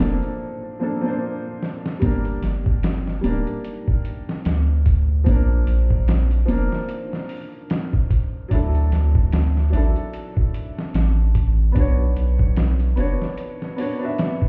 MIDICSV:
0, 0, Header, 1, 4, 480
1, 0, Start_track
1, 0, Tempo, 810811
1, 1196, Time_signature, 4, 2, 24, 8
1, 8576, End_track
2, 0, Start_track
2, 0, Title_t, "Felt piano"
2, 0, Program_c, 0, 0
2, 0, Control_c, 0, 64, 127
2, 0, Note_on_c, 0, 53, 79
2, 0, Note_on_c, 0, 58, 77
2, 0, Note_on_c, 0, 62, 82
2, 0, Note_on_c, 0, 69, 96
2, 4, Note_off_c, 0, 62, 0
2, 4, Note_on_c, 0, 62, 78
2, 10, Note_off_c, 0, 69, 0
2, 10, Note_on_c, 0, 69, 90
2, 453, Note_off_c, 0, 53, 0
2, 457, Note_off_c, 0, 58, 0
2, 459, Note_off_c, 0, 62, 0
2, 463, Note_off_c, 0, 69, 0
2, 470, Note_on_c, 0, 53, 81
2, 479, Note_on_c, 0, 58, 77
2, 486, Note_on_c, 0, 62, 76
2, 493, Note_on_c, 0, 69, 90
2, 578, Note_off_c, 0, 53, 0
2, 582, Note_off_c, 0, 58, 0
2, 586, Note_off_c, 0, 62, 0
2, 589, Note_off_c, 0, 69, 0
2, 599, Note_on_c, 0, 53, 91
2, 613, Note_on_c, 0, 58, 87
2, 627, Note_on_c, 0, 62, 89
2, 639, Note_on_c, 0, 72, 102
2, 1164, Note_off_c, 0, 53, 0
2, 1171, Note_off_c, 0, 58, 0
2, 1178, Note_off_c, 0, 62, 0
2, 1180, Note_on_c, 0, 55, 87
2, 1184, Note_off_c, 0, 72, 0
2, 1194, Note_on_c, 0, 58, 80
2, 1202, Control_c, 0, 64, 0
2, 1209, Note_on_c, 0, 62, 79
2, 1221, Note_on_c, 0, 70, 90
2, 1298, Control_c, 0, 64, 127
2, 1884, Note_off_c, 0, 55, 0
2, 1891, Note_off_c, 0, 58, 0
2, 1898, Note_off_c, 0, 62, 0
2, 1901, Note_on_c, 0, 55, 83
2, 1904, Note_off_c, 0, 70, 0
2, 1914, Note_on_c, 0, 58, 74
2, 1928, Note_on_c, 0, 62, 80
2, 1943, Note_on_c, 0, 70, 88
2, 3084, Note_off_c, 0, 55, 0
2, 3091, Note_off_c, 0, 58, 0
2, 3097, Note_off_c, 0, 62, 0
2, 3102, Note_on_c, 0, 53, 82
2, 3105, Note_off_c, 0, 70, 0
2, 3114, Note_on_c, 0, 58, 77
2, 3125, Control_c, 0, 64, 0
2, 3129, Note_on_c, 0, 62, 79
2, 3143, Note_on_c, 0, 70, 95
2, 3231, Control_c, 0, 64, 127
2, 3805, Note_off_c, 0, 53, 0
2, 3811, Note_off_c, 0, 58, 0
2, 3818, Note_off_c, 0, 62, 0
2, 3822, Note_on_c, 0, 53, 85
2, 3825, Note_off_c, 0, 70, 0
2, 3836, Note_on_c, 0, 58, 78
2, 3850, Note_on_c, 0, 62, 81
2, 3864, Note_on_c, 0, 70, 100
2, 5004, Note_off_c, 0, 53, 0
2, 5012, Note_off_c, 0, 58, 0
2, 5018, Note_off_c, 0, 62, 0
2, 5021, Note_on_c, 0, 54, 91
2, 5026, Note_off_c, 0, 70, 0
2, 5034, Note_on_c, 0, 62, 81
2, 5045, Control_c, 0, 64, 0
2, 5048, Note_on_c, 0, 64, 84
2, 5061, Note_on_c, 0, 69, 96
2, 5137, Control_c, 0, 64, 127
2, 5724, Note_off_c, 0, 54, 0
2, 5731, Note_off_c, 0, 62, 0
2, 5737, Note_off_c, 0, 64, 0
2, 5741, Note_on_c, 0, 54, 84
2, 5744, Note_off_c, 0, 69, 0
2, 5755, Note_on_c, 0, 62, 77
2, 5770, Note_on_c, 0, 64, 79
2, 5784, Note_on_c, 0, 69, 98
2, 6924, Note_off_c, 0, 54, 0
2, 6931, Note_off_c, 0, 62, 0
2, 6939, Note_off_c, 0, 64, 0
2, 6939, Note_on_c, 0, 59, 86
2, 6945, Note_off_c, 0, 69, 0
2, 6953, Note_on_c, 0, 62, 78
2, 6964, Control_c, 0, 64, 0
2, 6969, Note_on_c, 0, 66, 80
2, 6983, Note_on_c, 0, 73, 100
2, 7080, Control_c, 0, 64, 127
2, 7643, Note_off_c, 0, 59, 0
2, 7650, Note_off_c, 0, 62, 0
2, 7658, Note_off_c, 0, 66, 0
2, 7665, Note_off_c, 0, 73, 0
2, 7671, Note_on_c, 0, 59, 88
2, 7679, Note_on_c, 0, 62, 75
2, 7686, Note_on_c, 0, 66, 77
2, 7693, Note_on_c, 0, 73, 99
2, 8133, Note_off_c, 0, 59, 0
2, 8137, Note_off_c, 0, 62, 0
2, 8140, Note_off_c, 0, 66, 0
2, 8144, Note_off_c, 0, 73, 0
2, 8147, Note_on_c, 0, 59, 82
2, 8156, Note_on_c, 0, 62, 78
2, 8163, Note_on_c, 0, 66, 77
2, 8169, Note_on_c, 0, 73, 92
2, 8257, Note_off_c, 0, 59, 0
2, 8261, Note_off_c, 0, 62, 0
2, 8265, Note_off_c, 0, 66, 0
2, 8267, Note_off_c, 0, 73, 0
2, 8275, Note_on_c, 0, 59, 89
2, 8290, Note_on_c, 0, 62, 87
2, 8303, Note_on_c, 0, 66, 84
2, 8318, Note_on_c, 0, 76, 98
2, 8576, Note_off_c, 0, 59, 0
2, 8576, Note_off_c, 0, 62, 0
2, 8576, Note_off_c, 0, 66, 0
2, 8576, Note_off_c, 0, 76, 0
2, 8576, End_track
3, 0, Start_track
3, 0, Title_t, "Analog synth bass"
3, 0, Program_c, 1, 38
3, 1, Note_on_c, 1, 29, 92
3, 120, Note_off_c, 1, 29, 0
3, 1199, Note_on_c, 1, 31, 97
3, 1413, Note_off_c, 1, 31, 0
3, 1443, Note_on_c, 1, 31, 86
3, 1900, Note_off_c, 1, 31, 0
3, 1920, Note_on_c, 1, 26, 97
3, 2039, Note_off_c, 1, 26, 0
3, 2639, Note_on_c, 1, 38, 101
3, 3098, Note_off_c, 1, 38, 0
3, 3117, Note_on_c, 1, 34, 98
3, 3332, Note_off_c, 1, 34, 0
3, 3360, Note_on_c, 1, 34, 89
3, 3819, Note_off_c, 1, 34, 0
3, 3837, Note_on_c, 1, 29, 91
3, 3958, Note_off_c, 1, 29, 0
3, 5039, Note_on_c, 1, 38, 95
3, 5253, Note_off_c, 1, 38, 0
3, 5280, Note_on_c, 1, 38, 95
3, 5738, Note_off_c, 1, 38, 0
3, 5759, Note_on_c, 1, 33, 96
3, 5879, Note_off_c, 1, 33, 0
3, 6478, Note_on_c, 1, 33, 101
3, 6937, Note_off_c, 1, 33, 0
3, 6961, Note_on_c, 1, 35, 96
3, 7174, Note_off_c, 1, 35, 0
3, 7201, Note_on_c, 1, 35, 95
3, 7659, Note_off_c, 1, 35, 0
3, 7681, Note_on_c, 1, 30, 99
3, 7800, Note_off_c, 1, 30, 0
3, 8576, End_track
4, 0, Start_track
4, 0, Title_t, "Drums"
4, 0, Note_on_c, 9, 38, 104
4, 59, Note_off_c, 9, 38, 0
4, 134, Note_on_c, 9, 42, 37
4, 193, Note_off_c, 9, 42, 0
4, 962, Note_on_c, 9, 38, 59
4, 1021, Note_off_c, 9, 38, 0
4, 1099, Note_on_c, 9, 38, 67
4, 1158, Note_off_c, 9, 38, 0
4, 1194, Note_on_c, 9, 42, 86
4, 1196, Note_on_c, 9, 36, 107
4, 1254, Note_off_c, 9, 42, 0
4, 1255, Note_off_c, 9, 36, 0
4, 1332, Note_on_c, 9, 42, 44
4, 1392, Note_off_c, 9, 42, 0
4, 1436, Note_on_c, 9, 42, 71
4, 1441, Note_on_c, 9, 38, 51
4, 1495, Note_off_c, 9, 42, 0
4, 1500, Note_off_c, 9, 38, 0
4, 1575, Note_on_c, 9, 36, 98
4, 1634, Note_off_c, 9, 36, 0
4, 1677, Note_on_c, 9, 42, 88
4, 1682, Note_on_c, 9, 38, 121
4, 1736, Note_off_c, 9, 42, 0
4, 1741, Note_off_c, 9, 38, 0
4, 1820, Note_on_c, 9, 38, 46
4, 1879, Note_off_c, 9, 38, 0
4, 1918, Note_on_c, 9, 42, 75
4, 1977, Note_off_c, 9, 42, 0
4, 2055, Note_on_c, 9, 42, 41
4, 2114, Note_off_c, 9, 42, 0
4, 2158, Note_on_c, 9, 42, 92
4, 2217, Note_off_c, 9, 42, 0
4, 2295, Note_on_c, 9, 36, 92
4, 2354, Note_off_c, 9, 36, 0
4, 2397, Note_on_c, 9, 42, 66
4, 2456, Note_off_c, 9, 42, 0
4, 2540, Note_on_c, 9, 38, 56
4, 2599, Note_off_c, 9, 38, 0
4, 2636, Note_on_c, 9, 42, 87
4, 2641, Note_on_c, 9, 38, 117
4, 2695, Note_off_c, 9, 42, 0
4, 2700, Note_off_c, 9, 38, 0
4, 2876, Note_on_c, 9, 36, 103
4, 2876, Note_on_c, 9, 42, 67
4, 2935, Note_off_c, 9, 36, 0
4, 2935, Note_off_c, 9, 42, 0
4, 3115, Note_on_c, 9, 42, 89
4, 3116, Note_on_c, 9, 36, 104
4, 3174, Note_off_c, 9, 42, 0
4, 3175, Note_off_c, 9, 36, 0
4, 3357, Note_on_c, 9, 42, 70
4, 3416, Note_off_c, 9, 42, 0
4, 3495, Note_on_c, 9, 36, 95
4, 3555, Note_off_c, 9, 36, 0
4, 3599, Note_on_c, 9, 42, 93
4, 3604, Note_on_c, 9, 38, 116
4, 3658, Note_off_c, 9, 42, 0
4, 3663, Note_off_c, 9, 38, 0
4, 3736, Note_on_c, 9, 42, 44
4, 3795, Note_off_c, 9, 42, 0
4, 3839, Note_on_c, 9, 42, 74
4, 3898, Note_off_c, 9, 42, 0
4, 3980, Note_on_c, 9, 38, 51
4, 4039, Note_off_c, 9, 38, 0
4, 4076, Note_on_c, 9, 42, 86
4, 4136, Note_off_c, 9, 42, 0
4, 4222, Note_on_c, 9, 38, 42
4, 4281, Note_off_c, 9, 38, 0
4, 4317, Note_on_c, 9, 46, 78
4, 4376, Note_off_c, 9, 46, 0
4, 4558, Note_on_c, 9, 42, 86
4, 4563, Note_on_c, 9, 38, 118
4, 4617, Note_off_c, 9, 42, 0
4, 4623, Note_off_c, 9, 38, 0
4, 4696, Note_on_c, 9, 36, 96
4, 4755, Note_off_c, 9, 36, 0
4, 4798, Note_on_c, 9, 36, 94
4, 4799, Note_on_c, 9, 42, 70
4, 4857, Note_off_c, 9, 36, 0
4, 4859, Note_off_c, 9, 42, 0
4, 5038, Note_on_c, 9, 36, 110
4, 5039, Note_on_c, 9, 42, 83
4, 5098, Note_off_c, 9, 36, 0
4, 5098, Note_off_c, 9, 42, 0
4, 5179, Note_on_c, 9, 42, 43
4, 5238, Note_off_c, 9, 42, 0
4, 5281, Note_on_c, 9, 42, 71
4, 5287, Note_on_c, 9, 38, 56
4, 5340, Note_off_c, 9, 42, 0
4, 5346, Note_off_c, 9, 38, 0
4, 5418, Note_on_c, 9, 36, 97
4, 5477, Note_off_c, 9, 36, 0
4, 5520, Note_on_c, 9, 42, 90
4, 5525, Note_on_c, 9, 38, 115
4, 5579, Note_off_c, 9, 42, 0
4, 5585, Note_off_c, 9, 38, 0
4, 5667, Note_on_c, 9, 38, 44
4, 5726, Note_off_c, 9, 38, 0
4, 5762, Note_on_c, 9, 42, 69
4, 5821, Note_off_c, 9, 42, 0
4, 5897, Note_on_c, 9, 42, 40
4, 5956, Note_off_c, 9, 42, 0
4, 6000, Note_on_c, 9, 42, 94
4, 6059, Note_off_c, 9, 42, 0
4, 6138, Note_on_c, 9, 36, 93
4, 6197, Note_off_c, 9, 36, 0
4, 6242, Note_on_c, 9, 42, 69
4, 6301, Note_off_c, 9, 42, 0
4, 6385, Note_on_c, 9, 38, 57
4, 6444, Note_off_c, 9, 38, 0
4, 6479, Note_on_c, 9, 42, 83
4, 6484, Note_on_c, 9, 38, 121
4, 6538, Note_off_c, 9, 42, 0
4, 6544, Note_off_c, 9, 38, 0
4, 6719, Note_on_c, 9, 36, 96
4, 6719, Note_on_c, 9, 42, 74
4, 6778, Note_off_c, 9, 42, 0
4, 6779, Note_off_c, 9, 36, 0
4, 6960, Note_on_c, 9, 36, 106
4, 6960, Note_on_c, 9, 42, 88
4, 7019, Note_off_c, 9, 36, 0
4, 7019, Note_off_c, 9, 42, 0
4, 7202, Note_on_c, 9, 42, 70
4, 7261, Note_off_c, 9, 42, 0
4, 7337, Note_on_c, 9, 36, 95
4, 7396, Note_off_c, 9, 36, 0
4, 7438, Note_on_c, 9, 42, 91
4, 7443, Note_on_c, 9, 38, 124
4, 7497, Note_off_c, 9, 42, 0
4, 7502, Note_off_c, 9, 38, 0
4, 7576, Note_on_c, 9, 42, 45
4, 7635, Note_off_c, 9, 42, 0
4, 7679, Note_on_c, 9, 42, 68
4, 7738, Note_off_c, 9, 42, 0
4, 7824, Note_on_c, 9, 38, 52
4, 7883, Note_off_c, 9, 38, 0
4, 7918, Note_on_c, 9, 42, 88
4, 7977, Note_off_c, 9, 42, 0
4, 8063, Note_on_c, 9, 38, 43
4, 8122, Note_off_c, 9, 38, 0
4, 8159, Note_on_c, 9, 46, 85
4, 8219, Note_off_c, 9, 46, 0
4, 8397, Note_on_c, 9, 42, 86
4, 8402, Note_on_c, 9, 38, 121
4, 8456, Note_off_c, 9, 42, 0
4, 8461, Note_off_c, 9, 38, 0
4, 8535, Note_on_c, 9, 36, 100
4, 8576, Note_off_c, 9, 36, 0
4, 8576, End_track
0, 0, End_of_file